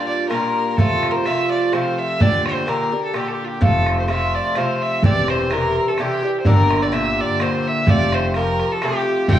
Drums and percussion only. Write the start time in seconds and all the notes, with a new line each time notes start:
0.31 bodhran
0.78 bodhran
1.03 bodhran
1.25 bodhran
1.73 bodhran
2.21 bodhran
2.46 bodhran
2.68 bodhran
3.14 bodhran
3.62 bodhran
3.87 bodhran
4.08 bodhran
4.55 bodhran
5.03 bodhran
5.28 bodhran
5.51 bodhran
5.98 bodhran
6.45 bodhran
6.71 bodhran
6.93 bodhran
7.40 bodhran
7.87 bodhran
8.12 bodhran
8.34 bodhran
8.60 bodhran
8.82 bodhran
9.28 bodhran